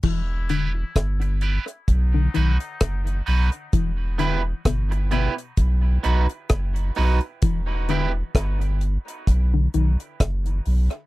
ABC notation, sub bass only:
X:1
M:4/4
L:1/16
Q:"Swing 16ths" 1/4=65
K:Em
V:1 name="Sub bass" clef=bass
E,,,4 G,,,3 z B,,,2 B,,, z F,,,2 B,,, z | E,,,4 G,,,3 z B,,,2 B,,, z F,,,2 B,,, z | E,,,4 G,,,3 z B,,,2 B,,, z F,,,2 B,,, z |]